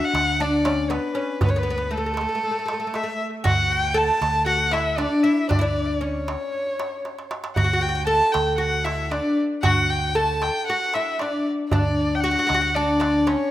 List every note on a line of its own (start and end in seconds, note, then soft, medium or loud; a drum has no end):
0.00 0.36 F#4 medium
0.00 darbuka ka soft
0.05 0.42 F#5 medium
0.13 0.97 D2 medium
0.13 darbuka tek medium
0.40 0.66 D4 medium
0.40 0.92 D5 medium
0.65 0.89 C#4 medium
0.65 darbuka tek medium
0.90 1.14 B3 medium
0.90 1.42 B4 medium
0.90 darbuka tek medium
1.04 darbuka ka soft
1.15 1.41 C#4 medium
1.41 2.25 D2 medium
1.41 1.47 B3 medium
1.41 1.51 B4 medium
1.41 darbuka dum medium
1.49 1.55 B3 medium
1.49 1.60 C#5 medium
1.54 1.62 B3 medium
1.54 darbuka ka soft
1.58 1.94 B4 medium
1.63 1.69 B3 medium
1.67 1.76 B3 medium
1.67 darbuka ka soft
1.77 1.86 B3 medium
1.91 1.96 A3 medium
1.95 2.05 A3 soft
1.95 2.97 A4 medium
2.05 2.12 A3 medium
2.05 darbuka ka soft
2.14 2.20 A3 soft
2.14 darbuka tek medium
2.21 2.28 A3 soft
2.29 2.34 A3 soft
2.35 2.42 A3 soft
2.43 2.50 A3 soft
2.51 2.58 A3 soft
2.59 2.64 A3 soft
2.66 2.72 A3 soft
2.66 darbuka tek medium
2.73 2.78 A3 soft
2.80 2.86 A3 soft
2.87 2.94 A3 medium
2.94 3.02 A3 medium
2.94 3.21 E5 medium
2.94 darbuka tek medium
3.04 3.10 A3 medium
3.04 darbuka ka soft
3.44 4.08 D2 medium
3.44 3.94 F#4 loud
3.44 3.73 F#5 medium
3.44 darbuka dum medium
3.58 darbuka ka soft
3.71 3.99 G5 medium
3.71 darbuka ka soft
3.94 4.46 A4 medium
3.94 4.47 A5 medium
4.09 darbuka ka soft
4.21 5.06 D2 medium
4.21 darbuka tek medium
4.46 4.71 F#4 medium
4.46 4.74 F#5 medium
4.71 4.97 E4 medium
4.71 4.99 E5 medium
4.71 darbuka tek medium
4.97 5.23 D4 medium
4.97 5.25 D5 medium
4.97 darbuka tek medium
5.12 darbuka ka soft
5.23 5.51 E4 medium
5.23 5.49 E5 medium
5.49 6.35 D2 medium
5.49 5.57 D4 medium
5.49 5.63 D5 medium
5.49 darbuka dum medium
5.59 6.00 D4 medium
5.59 5.65 E4 medium
5.63 6.03 D5 medium
5.63 darbuka ka soft
5.76 darbuka ka soft
6.01 7.26 C#4 medium
6.01 7.31 C#5 medium
6.01 darbuka ka soft
6.28 darbuka tek medium
6.41 darbuka ka soft
6.54 darbuka ka soft
6.66 darbuka ka soft
6.80 darbuka tek medium
7.05 darbuka tek soft
7.19 darbuka ka medium
7.31 darbuka tek medium
7.44 darbuka ka medium
7.56 8.20 D2 medium
7.56 7.63 F#4 medium
7.56 7.84 F#5 medium
7.56 darbuka dum medium
7.64 7.71 F#4 medium
7.70 7.80 F#4 medium
7.70 darbuka ka soft
7.81 7.87 F#4 medium
7.81 8.07 G5 medium
7.81 darbuka ka soft
7.89 7.94 F#4 medium
7.95 8.02 F#4 medium
8.07 8.58 A4 loud
8.07 8.34 A5 medium
8.21 darbuka ka soft
8.32 9.19 D2 medium
8.32 8.57 G5 medium
8.32 darbuka tek medium
8.58 8.86 F#4 medium
8.58 8.86 F#5 medium
8.85 9.11 E4 medium
8.85 9.13 E5 medium
8.85 darbuka tek medium
9.11 9.36 D4 medium
9.11 9.37 D5 medium
9.11 darbuka tek medium
9.25 darbuka ka soft
9.63 10.48 D2 medium
9.63 10.15 F#4 loud
9.63 9.91 F#5 medium
9.63 darbuka dum medium
9.77 darbuka ka soft
9.90 10.17 G5 medium
9.90 darbuka ka soft
10.15 10.63 A4 medium
10.15 10.44 A5 medium
10.29 darbuka ka soft
10.42 10.67 G5 medium
10.42 darbuka tek medium
10.67 10.95 F#4 medium
10.67 10.96 F#5 medium
10.94 11.21 E4 medium
10.94 11.22 E5 medium
10.94 darbuka tek medium
11.19 11.44 D4 medium
11.19 11.46 D5 medium
11.19 darbuka tek medium
11.33 darbuka ka soft
11.70 12.35 D2 medium
11.70 12.23 D4 medium
11.70 12.16 D5 medium
11.70 darbuka dum medium
11.85 darbuka ka soft
11.97 darbuka ka soft
12.15 12.22 G5 medium
12.20 12.30 F#4 medium
12.20 12.77 F#5 loud
12.31 12.38 F#4 medium
12.39 12.45 F#4 medium
12.47 13.34 D2 medium
12.47 12.53 F#4 medium
12.47 darbuka tek medium
12.54 12.60 F#4 medium
12.61 12.69 F#4 medium
12.75 12.99 D4 medium
12.75 13.28 D5 medium
13.00 13.26 D4 medium
13.00 darbuka tek medium
13.27 13.51 C#4 medium
13.27 13.51 C#5 medium
13.27 darbuka tek medium
13.40 darbuka ka soft